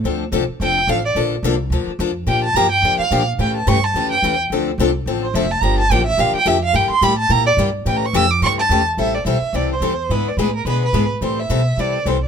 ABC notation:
X:1
M:4/4
L:1/8
Q:"Swing" 1/4=215
K:Dm
V:1 name="Violin"
z4 g2 f d | z8 | g a b g2 f2 z | g a ^c' a2 g2 z |
z4 z c e a | b a g e f g e f | g c' =b a _b d z2 | (3g b ^c' e' d' c' a2 z |
[K:Am] e d e2 d c3 | B d B _B =B B2 z | c e3 d2 c d |]
V:2 name="Steel-string acoustic guitar"
[D,F,CDA] z [D,F,CDA] z [D,F,CDA] z [D,F,CDA] z | [D,F,B,DA] z [D,F,B,DA] z [D,F,B,DA] z [D,F,B,DA] z | [D,F,B,DG] z [D,F,B,DG] z [D,F,B,DG] z [D,F,B,DG] z | [^C,E,A,^CG] z [C,E,A,CG] z [C,E,A,CG] z [C,E,A,CG] z |
[D,F,CDA] z [D,F,CDA] z [D,F,CDA] z [D,F,CDA] z | [D,F,B,DG] z [D,F,B,DG] z [D,F,B,DG] z [D,F,B,DG] z | [D,G,B,EG] z [D,G,B,EG] z [D,G,B,EG] z [D,G,B,EG] z | [^C,E,A,^CG] z [C,E,A,CG] z [C,E,A,CG] z [C,E,A,CG] z |
[K:Am] [E,G,CEA] z [E,G,CEA] z [E,G,CEA] z [E,G,CEA] z | [D,^G,B,E^G] z [D,G,B,EG] z [D,G,B,EG] z [D,G,B,EG] z | [E,G,CEA] z [E,G,CEA] z [E,G,CEA] z [E,G,CEA] z |]
V:3 name="Upright bass" clef=bass
D,,2 C,, z F,,,2 A,,,2 | B,,,2 C,,2 D,, z F,,2 | B,,2 G,,2 F,, z B,,2 | A,,2 G,,2 F,,2 E,,2 |
D,,2 C,,2 A,,,2 F,,,2 | G,,,2 A,,,2 B,,, z F,,2 | G,, z A,,2 B,,2 G,,2 | A,,2 F,,2 G,,2 E,,2 |
[K:Am] A,,,2 B,,, z C,,2 E,,2 | ^G,,2 A,,2 B,,2 G,,2 | A,,2 B,,2 C,2 C,,2 |]